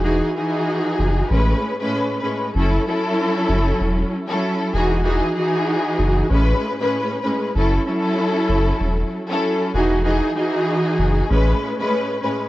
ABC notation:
X:1
M:4/4
L:1/16
Q:"Swing 16ths" 1/4=96
K:F#dor
V:1 name="String section"
[E,DFG]2 [E,DFG]6 [A,,G,CB]3 [A,,G,CB]3 [A,,G,CB]2 | [F,CEA]2 [F,CEA]8 z [F,CEA]3 [E,DFG]2 | [E,DFG]2 [E,DFG]6 [A,,G,CB]3 [A,,G,CB]3 [A,,G,CB]2 | [F,CEA]2 [F,CEA]8 z [F,CEA]3 [E,DFG]2 |
[E,DFG]2 [E,DFG]6 [A,,G,CB]3 [A,,G,CB]3 [A,,G,CB]2 |]
V:2 name="Sub bass" clef=bass
E,,,2 z4 F,,,2 A,,,2 z6 | F,,,2 z4 F,,,2 E,,,2 z4 E,,,2- | E,,,2 z4 F,,,2 A,,,2 z6 | F,,,2 z4 F,,,2 E,,,2 z4 E,,,2- |
E,,,2 z4 F,,,2 A,,,2 z6 |]